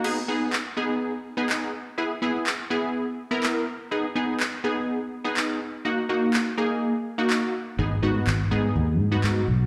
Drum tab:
CC |x-------|--------|--------|--------|
CP |--x---x-|--x---x-|--x---x-|--x---x-|

CC |--------|
CP |--x---x-|